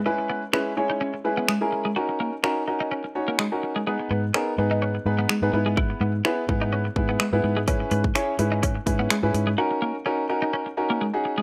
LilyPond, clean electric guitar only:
\new Staff \with { instrumentName = "Clean electric guitar" } { \time 4/4 \key cis \dorian \tempo 4 = 126 cis'16 r16 b16 r16 cis'16 r8 dis'16 cis'16 r8 b16 gis16 r8 gis16 | fis'16 r16 ais16 r16 cis'16 r8 dis'16 cis'16 r8 ais16 gis16 r8 gis16 | gis16 r16 b16 r16 cis'16 r8 dis'16 cis'16 r8 b16 gis16 r8 gis16 | e'16 r16 b16 r16 cis'16 r8 dis'16 cis'16 r8 b16 gis16 r8 gis16 |
cis'16 r16 b16 r16 cis'16 r8 dis'16 cis'16 r8 b16 gis16 r8 gis16 | fis'16 r16 ais16 r16 cis'16 r8 dis'16 cis'16 r8 ais16 gis16 r8 gis16 | }